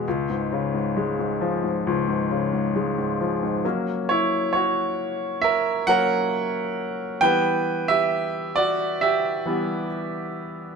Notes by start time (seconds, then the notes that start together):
0.08 C#2
0.30 G#2
0.52 C#3
0.74 G#2
0.97 G#3
1.19 G#2
1.41 F3
1.64 G#2
1.87 C#2
2.08 G#2
2.31 C#3
2.53 G#2
2.76 G#3
2.98 G#2
3.21 F3
3.43 G#2
3.65 F#3 A#3 C#4
4.09 E4 C#5
4.53 F#4 C#5
5.42 A#4 E5
5.87 F#3 A#3 C#4 A#4 F#5
7.21 E3 G3 B3 B4 G5
7.88 G4 E5
8.56 F#4 D5
9.01 G4 E5
9.46 E3 G3 B3